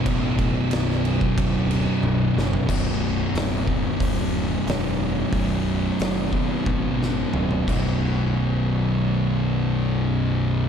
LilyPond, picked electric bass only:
\new Staff \with { instrumentName = "Picked electric bass" } { \clef bass \time 4/4 \key b \minor \tempo 4 = 90 a,,4 b,,,4 d,,4 b,,,8 fis,,8 | b,,,4 d,,4 d,,4 e,,4 | b,,,4 fis,,4 gis,,4 d,,8 b,,,8~ | b,,,1 | }